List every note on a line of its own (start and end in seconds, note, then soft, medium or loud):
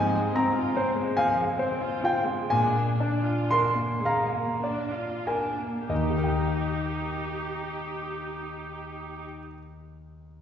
0.00 2.46 G#2 soft
0.00 0.14 F3 soft
0.00 0.34 C4 soft
0.00 0.32 G#5 medium
0.15 0.35 G#3 soft
0.35 1.01 C4 soft
0.35 0.55 C4 soft
0.35 1.14 A#5 medium
0.55 0.76 F4 soft
0.75 0.96 C4 soft
0.75 1.43 C5 soft
0.96 1.17 G#3 soft
1.16 1.38 F3 soft
1.16 1.86 F5 soft
1.16 2.00 G#5 medium
1.38 1.59 G#3 soft
1.59 1.81 C4 soft
1.59 2.31 C5 soft
1.81 2.03 F4 soft
2.03 2.27 C4 soft
2.03 2.51 F4 soft
2.03 2.48 G5 medium
2.25 2.49 G#3 soft
2.50 5.86 A#2 soft
2.50 2.73 G#3 soft
2.50 2.97 D4 soft
2.50 3.46 G#5 medium
2.75 2.99 A#3 soft
2.99 3.24 D4 soft
2.99 3.83 D4 soft
3.24 3.50 F4 soft
3.49 3.77 D4 soft
3.49 4.40 A#4 soft
3.49 4.01 C6 medium
3.76 4.04 A#3 soft
4.04 4.33 G#3 soft
4.04 5.02 F5 soft
4.04 5.24 A#5 soft
4.33 4.64 A#3 soft
4.63 4.95 D4 soft
4.63 5.66 D5 soft
4.95 5.27 F4 soft
5.27 5.59 D4 soft
5.27 5.89 A#4 soft
5.27 5.85 G#5 soft
5.59 5.89 A#3 soft
5.89 9.24 D#2 soft
5.89 9.24 D#4 soft
5.89 9.24 G4 soft
5.89 9.25 D#5 soft
5.95 9.31 D#3 soft
6.03 9.38 D#4 soft
6.09 9.45 G4 soft
6.17 9.53 A#4 soft
6.24 9.59 G5 soft